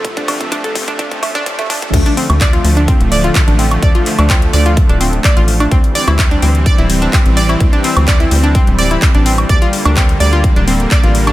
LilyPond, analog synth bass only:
\new Staff \with { instrumentName = "Analog synth bass" } { \clef bass \time 4/4 \key f \major \tempo 4 = 127 d,16 r8 d,8. d,8. d,,16 r8. d,16 r8 | d,16 r8 d,8. d,8. d,,8. r16 a,,8. | d,16 r8 d,8. d,8. d,,8. r16 a,,8. | d,16 r8 d,8. d,8. d,,8. r16 a,,8. |
d,16 r8 d,8. d,8. d,,8. r16 a,,8. | d,16 r8 d,8. d,8. d,,8. r16 a,,8. | }